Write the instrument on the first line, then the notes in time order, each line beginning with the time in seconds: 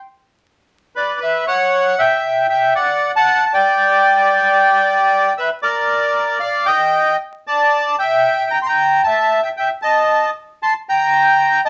bandoneon
0.96 B4 D5
1.20 B4 E5
1.47 C#5 F#5
1.99 E5 G5
2.50 E5 G5
2.75 D5 F#5
3.16 F#5 A5
3.46 A5
3.53 D5 G5
5.37 B4 E5
5.62 A#4 D5
6.40 D5 F5
6.66 D#5 G5
7.47 D5 A5
7.99 E5 G5
8.51 G5 A#5
8.62 C6
8.66 G5 A#5
9.03 E5 A5
9.43 E5 G5
9.57 E5 G5
9.82 D#5 A5
10.62 A5 C6
10.89 G5 A#5
11.65 D#5 A5